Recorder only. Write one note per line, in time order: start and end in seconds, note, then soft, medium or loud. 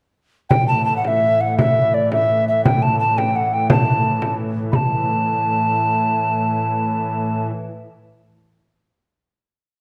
0.49 0.67 G5 medium
0.68 0.85 A5 medium
0.85 0.96 A5 medium
0.97 1.04 F#5 medium
1.04 1.42 E5 medium
1.04 1.09 F#5 medium
1.41 1.58 F#5 medium
1.59 1.96 E5 medium
1.94 2.12 D5 medium
2.12 2.45 E5 medium
2.48 2.64 E5 medium
2.65 2.84 G5 medium
2.82 2.99 A5 medium
2.99 3.19 A5 medium
3.18 3.37 G5 medium
3.36 3.55 F#5 medium
3.53 3.70 G5 medium
3.71 4.35 A5 medium
4.72 7.47 A5 medium
4.72 4.76 B5 medium